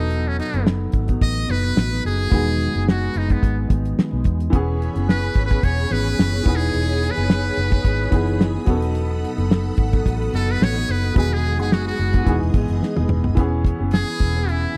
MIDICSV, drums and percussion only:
0, 0, Header, 1, 2, 480
1, 0, Start_track
1, 0, Tempo, 552486
1, 96, Time_signature, 4, 2, 24, 8
1, 12834, End_track
2, 0, Start_track
2, 0, Title_t, "Drums"
2, 90, Note_on_c, 9, 42, 73
2, 177, Note_off_c, 9, 42, 0
2, 344, Note_on_c, 9, 42, 74
2, 431, Note_off_c, 9, 42, 0
2, 465, Note_on_c, 9, 42, 53
2, 552, Note_off_c, 9, 42, 0
2, 579, Note_on_c, 9, 38, 110
2, 666, Note_off_c, 9, 38, 0
2, 800, Note_on_c, 9, 42, 66
2, 812, Note_on_c, 9, 36, 84
2, 887, Note_off_c, 9, 42, 0
2, 899, Note_off_c, 9, 36, 0
2, 938, Note_on_c, 9, 42, 53
2, 947, Note_on_c, 9, 36, 81
2, 1025, Note_off_c, 9, 42, 0
2, 1034, Note_off_c, 9, 36, 0
2, 1055, Note_on_c, 9, 36, 87
2, 1056, Note_on_c, 9, 42, 81
2, 1142, Note_off_c, 9, 36, 0
2, 1143, Note_off_c, 9, 42, 0
2, 1290, Note_on_c, 9, 42, 74
2, 1377, Note_off_c, 9, 42, 0
2, 1417, Note_on_c, 9, 42, 48
2, 1504, Note_off_c, 9, 42, 0
2, 1539, Note_on_c, 9, 38, 108
2, 1626, Note_off_c, 9, 38, 0
2, 1766, Note_on_c, 9, 46, 50
2, 1853, Note_off_c, 9, 46, 0
2, 1902, Note_on_c, 9, 42, 51
2, 1989, Note_off_c, 9, 42, 0
2, 2011, Note_on_c, 9, 42, 80
2, 2013, Note_on_c, 9, 36, 109
2, 2098, Note_off_c, 9, 42, 0
2, 2100, Note_off_c, 9, 36, 0
2, 2267, Note_on_c, 9, 42, 74
2, 2354, Note_off_c, 9, 42, 0
2, 2390, Note_on_c, 9, 42, 52
2, 2477, Note_off_c, 9, 42, 0
2, 2506, Note_on_c, 9, 38, 113
2, 2593, Note_off_c, 9, 38, 0
2, 2726, Note_on_c, 9, 42, 66
2, 2813, Note_off_c, 9, 42, 0
2, 2862, Note_on_c, 9, 42, 53
2, 2869, Note_on_c, 9, 36, 80
2, 2948, Note_off_c, 9, 42, 0
2, 2956, Note_off_c, 9, 36, 0
2, 2978, Note_on_c, 9, 36, 85
2, 2985, Note_on_c, 9, 42, 74
2, 3065, Note_off_c, 9, 36, 0
2, 3072, Note_off_c, 9, 42, 0
2, 3215, Note_on_c, 9, 36, 90
2, 3218, Note_on_c, 9, 42, 81
2, 3302, Note_off_c, 9, 36, 0
2, 3305, Note_off_c, 9, 42, 0
2, 3348, Note_on_c, 9, 42, 48
2, 3435, Note_off_c, 9, 42, 0
2, 3464, Note_on_c, 9, 38, 109
2, 3551, Note_off_c, 9, 38, 0
2, 3686, Note_on_c, 9, 42, 71
2, 3694, Note_on_c, 9, 36, 83
2, 3773, Note_off_c, 9, 42, 0
2, 3781, Note_off_c, 9, 36, 0
2, 3826, Note_on_c, 9, 42, 51
2, 3912, Note_off_c, 9, 42, 0
2, 3935, Note_on_c, 9, 36, 104
2, 3936, Note_on_c, 9, 42, 81
2, 4022, Note_off_c, 9, 36, 0
2, 4023, Note_off_c, 9, 42, 0
2, 4188, Note_on_c, 9, 42, 70
2, 4274, Note_off_c, 9, 42, 0
2, 4306, Note_on_c, 9, 42, 53
2, 4393, Note_off_c, 9, 42, 0
2, 4424, Note_on_c, 9, 38, 105
2, 4510, Note_off_c, 9, 38, 0
2, 4640, Note_on_c, 9, 42, 74
2, 4652, Note_on_c, 9, 36, 90
2, 4727, Note_off_c, 9, 42, 0
2, 4739, Note_off_c, 9, 36, 0
2, 4776, Note_on_c, 9, 42, 50
2, 4786, Note_on_c, 9, 36, 89
2, 4862, Note_off_c, 9, 42, 0
2, 4873, Note_off_c, 9, 36, 0
2, 4894, Note_on_c, 9, 36, 87
2, 4895, Note_on_c, 9, 42, 81
2, 4980, Note_off_c, 9, 36, 0
2, 4982, Note_off_c, 9, 42, 0
2, 5131, Note_on_c, 9, 42, 82
2, 5218, Note_off_c, 9, 42, 0
2, 5259, Note_on_c, 9, 42, 45
2, 5345, Note_off_c, 9, 42, 0
2, 5381, Note_on_c, 9, 38, 107
2, 5468, Note_off_c, 9, 38, 0
2, 5600, Note_on_c, 9, 42, 74
2, 5611, Note_on_c, 9, 36, 107
2, 5686, Note_off_c, 9, 42, 0
2, 5698, Note_off_c, 9, 36, 0
2, 5741, Note_on_c, 9, 42, 53
2, 5828, Note_off_c, 9, 42, 0
2, 5853, Note_on_c, 9, 42, 81
2, 5940, Note_off_c, 9, 42, 0
2, 6105, Note_on_c, 9, 42, 77
2, 6192, Note_off_c, 9, 42, 0
2, 6225, Note_on_c, 9, 42, 50
2, 6312, Note_off_c, 9, 42, 0
2, 6340, Note_on_c, 9, 38, 108
2, 6427, Note_off_c, 9, 38, 0
2, 6561, Note_on_c, 9, 42, 70
2, 6647, Note_off_c, 9, 42, 0
2, 6699, Note_on_c, 9, 42, 52
2, 6707, Note_on_c, 9, 36, 88
2, 6785, Note_off_c, 9, 42, 0
2, 6794, Note_off_c, 9, 36, 0
2, 6816, Note_on_c, 9, 36, 91
2, 6819, Note_on_c, 9, 42, 84
2, 6903, Note_off_c, 9, 36, 0
2, 6906, Note_off_c, 9, 42, 0
2, 7054, Note_on_c, 9, 36, 86
2, 7056, Note_on_c, 9, 42, 86
2, 7141, Note_off_c, 9, 36, 0
2, 7143, Note_off_c, 9, 42, 0
2, 7186, Note_on_c, 9, 42, 49
2, 7273, Note_off_c, 9, 42, 0
2, 7304, Note_on_c, 9, 38, 107
2, 7391, Note_off_c, 9, 38, 0
2, 7526, Note_on_c, 9, 42, 79
2, 7534, Note_on_c, 9, 36, 97
2, 7613, Note_off_c, 9, 42, 0
2, 7621, Note_off_c, 9, 36, 0
2, 7665, Note_on_c, 9, 42, 54
2, 7751, Note_off_c, 9, 42, 0
2, 7776, Note_on_c, 9, 42, 74
2, 7863, Note_off_c, 9, 42, 0
2, 8031, Note_on_c, 9, 42, 75
2, 8117, Note_off_c, 9, 42, 0
2, 8152, Note_on_c, 9, 42, 51
2, 8238, Note_off_c, 9, 42, 0
2, 8265, Note_on_c, 9, 38, 115
2, 8352, Note_off_c, 9, 38, 0
2, 8486, Note_on_c, 9, 42, 71
2, 8495, Note_on_c, 9, 36, 95
2, 8573, Note_off_c, 9, 42, 0
2, 8582, Note_off_c, 9, 36, 0
2, 8622, Note_on_c, 9, 42, 52
2, 8630, Note_on_c, 9, 36, 89
2, 8709, Note_off_c, 9, 42, 0
2, 8717, Note_off_c, 9, 36, 0
2, 8738, Note_on_c, 9, 36, 83
2, 8744, Note_on_c, 9, 42, 78
2, 8825, Note_off_c, 9, 36, 0
2, 8831, Note_off_c, 9, 42, 0
2, 8883, Note_on_c, 9, 42, 37
2, 8970, Note_off_c, 9, 42, 0
2, 8981, Note_on_c, 9, 42, 81
2, 9067, Note_off_c, 9, 42, 0
2, 9110, Note_on_c, 9, 42, 49
2, 9197, Note_off_c, 9, 42, 0
2, 9228, Note_on_c, 9, 38, 112
2, 9314, Note_off_c, 9, 38, 0
2, 9450, Note_on_c, 9, 42, 73
2, 9537, Note_off_c, 9, 42, 0
2, 9585, Note_on_c, 9, 42, 52
2, 9672, Note_off_c, 9, 42, 0
2, 9695, Note_on_c, 9, 36, 113
2, 9696, Note_on_c, 9, 42, 81
2, 9782, Note_off_c, 9, 36, 0
2, 9783, Note_off_c, 9, 42, 0
2, 9950, Note_on_c, 9, 42, 75
2, 10036, Note_off_c, 9, 42, 0
2, 10072, Note_on_c, 9, 42, 53
2, 10159, Note_off_c, 9, 42, 0
2, 10184, Note_on_c, 9, 38, 115
2, 10271, Note_off_c, 9, 38, 0
2, 10299, Note_on_c, 9, 42, 34
2, 10386, Note_off_c, 9, 42, 0
2, 10402, Note_on_c, 9, 42, 72
2, 10424, Note_on_c, 9, 38, 34
2, 10489, Note_off_c, 9, 42, 0
2, 10511, Note_off_c, 9, 38, 0
2, 10539, Note_on_c, 9, 42, 57
2, 10548, Note_on_c, 9, 36, 86
2, 10626, Note_off_c, 9, 42, 0
2, 10635, Note_off_c, 9, 36, 0
2, 10656, Note_on_c, 9, 36, 94
2, 10658, Note_on_c, 9, 42, 82
2, 10743, Note_off_c, 9, 36, 0
2, 10745, Note_off_c, 9, 42, 0
2, 10801, Note_on_c, 9, 42, 35
2, 10888, Note_off_c, 9, 42, 0
2, 10894, Note_on_c, 9, 36, 94
2, 10894, Note_on_c, 9, 42, 81
2, 10981, Note_off_c, 9, 36, 0
2, 10981, Note_off_c, 9, 42, 0
2, 11019, Note_on_c, 9, 42, 52
2, 11106, Note_off_c, 9, 42, 0
2, 11144, Note_on_c, 9, 38, 61
2, 11230, Note_off_c, 9, 38, 0
2, 11264, Note_on_c, 9, 48, 61
2, 11351, Note_off_c, 9, 48, 0
2, 11373, Note_on_c, 9, 45, 90
2, 11460, Note_off_c, 9, 45, 0
2, 11504, Note_on_c, 9, 43, 91
2, 11591, Note_off_c, 9, 43, 0
2, 11615, Note_on_c, 9, 42, 74
2, 11616, Note_on_c, 9, 36, 112
2, 11702, Note_off_c, 9, 42, 0
2, 11703, Note_off_c, 9, 36, 0
2, 11855, Note_on_c, 9, 36, 90
2, 11870, Note_on_c, 9, 42, 72
2, 11942, Note_off_c, 9, 36, 0
2, 11957, Note_off_c, 9, 42, 0
2, 12086, Note_on_c, 9, 42, 85
2, 12109, Note_on_c, 9, 38, 102
2, 12173, Note_off_c, 9, 42, 0
2, 12196, Note_off_c, 9, 38, 0
2, 12329, Note_on_c, 9, 42, 68
2, 12339, Note_on_c, 9, 36, 84
2, 12351, Note_on_c, 9, 38, 33
2, 12416, Note_off_c, 9, 42, 0
2, 12426, Note_off_c, 9, 36, 0
2, 12438, Note_off_c, 9, 38, 0
2, 12587, Note_on_c, 9, 42, 78
2, 12674, Note_off_c, 9, 42, 0
2, 12834, End_track
0, 0, End_of_file